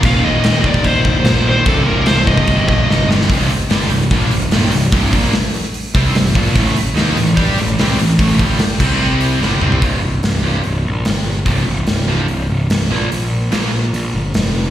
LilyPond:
<<
  \new Staff \with { instrumentName = "Lead electric guitar" } { \time 4/4 \key c \dorian \tempo 4 = 147 f''8 ees''4 d''8 c''4. c''8 | a'8 bes'8 c''8 ees''4 ees''4 r8 | r1 | r1 |
r1 | r1 | r1 | r1 |
r1 | }
  \new Staff \with { instrumentName = "Distorted electric guitar" } { \clef bass \time 4/4 \key c \dorian <ees, bes, ees>4. <ees, bes, ees>4. <ees, bes, ees>4 | <c, g, c>4. <c, g, c>4. <c, g, c>4 | <c, g, c>8 r8 <g, d g>8 <c, g,>8 <bes, f bes>8 <c, g,>8 <ees, bes, ees>8 <c, g,>8 | <c, g, c>8 <bes, f bes>8 r4. <c g c'>8 <c, g,>8 <bes, f bes>8 |
<a, e a>8 r8 <ees bes ees'>8 <a, e>8 <g d' g'>8 <a, e>8 <c g c'>8 <a, e>8 | <a, e a>8 <g, d g>8 r8 <c g c'>4. <g, d g>8 <c g c'>8 | <c, g, c>8 r4 <c, g, c>8 r2 | <f, c f>8 r4 <f, c f>8 r4. <bes, f bes>8 |
r4 <bes, f bes>8 r2 r8 | }
  \new Staff \with { instrumentName = "Distorted electric guitar" } { \clef bass \time 4/4 \key c \dorian <ees, bes, ees>1 | <c, g, c>1 | <c, g, c>8 r8 <g, d g>8 <c, g,>8 <bes, f bes>8 <c, g,>8 <ees, bes, ees>8 <c, g,>8 | <c, g, c>8 <bes, f bes>8 r4. <c g c'>8 <c, g,>8 <bes, f bes>8 |
<a, e a>8 r8 <ees bes ees'>8 <a, e>8 <g d' g'>8 <a, e>8 <c g c'>8 <a, e>8 | <a, e a>8 <g, d g>8 r8 <c g c'>4. <g, d g>8 <c g c'>8 | <c, g, c>8 r4 <c, g, c>8 r2 | <f, c f>8 r4 <f, c f>8 r4. <bes, f bes>8 |
r4 <bes, f bes>8 r2 r8 | }
  \new Staff \with { instrumentName = "Distorted electric guitar" } { \clef bass \time 4/4 \key c \dorian <ees, bes, ees>2.~ <ees, bes, ees>8 <ees, bes, ees>8 | <c, g, c>2.~ <c, g, c>8 <c, g, c>8 | <c, g, c>8 r8 <g, d g>8 <c, g,>8 <bes, f bes>8 <c, g,>8 <ees, bes, ees>8 <c, g,>8 | <c, g, c>8 <bes, f bes>8 r4. <c g c'>8 <c, g,>8 <bes, f bes>8 |
<a, e a>8 r8 <ees bes ees'>8 <a, e>8 <g d' g'>8 <a, e>8 <c g c'>8 <a, e>8 | <a, e a>8 <g, d g>8 r8 <c g c'>4. <g, d g>8 <c g c'>8 | r1 | r1 |
r1 | }
  \new Staff \with { instrumentName = "Picked electric bass" } { \clef bass \time 4/4 \key c \dorian ees,,8 ees,,8 ees,,8 ees,,8 bes,,8 c,,8 bes,,4 | c,,8 c,,8 c,,8 c,,8 g,,8 bes,,8 g,,4 | c,,8 r8 g,,8 c,,8 bes,,8 c,,8 ees,,8 c,,8 | c,,8 bes,,8 r4. c,8 c,,8 bes,,8 |
a,,8 r8 ees,8 a,,8 g,8 a,,8 c,8 a,,8 | a,,8 g,,8 r8 c,4. g,,8 c,8 | c,,4 c,,4 c,,8 bes,,8 g,,4 | c,,8 c,,8 c,,4 c,,8 c,,8 c,,8 bes,,8 |
bes,,4 bes,,4 bes,,8 g,,8 f,,4 | }
  \new DrumStaff \with { instrumentName = "Drums" } \drummode { \time 4/4 <cymc bd>4 <cymc sn>8 bd16 bd16 <cymc bd>8 bd8 <cymc sn>4 | <cymc bd>4 <cymc sn>8 bd16 bd16 <cymc bd>8 bd8 sn8 sn16 sn16 | <hho bd>8 hho8 <hho sn>8 hho8 bd8 hho8 <hho sn>8 hho8 | <hho bd>8 <hho bd>8 <hho sn>8 hho8 hho8 <hho bd>8 <hho sn>8 <hho bd>8 |
<hho bd>8 hho8 <hho sn>8 hho8 <hho bd>8 hho8 <hho sn>8 hho8 | <hho bd>8 <hho bd>16 sn16 <hho sn>8 <cymc bd>8 r8 hho8 sn16 tommh16 toml16 tomfh16 | <hho bd>4 <hho sn>4 hho4 <hho sn>4 | <hho bd>4 <hho sn>4 hho4 <hho sn>4 |
hho4 <hho sn>4 hho4 <hho sn>4 | }
>>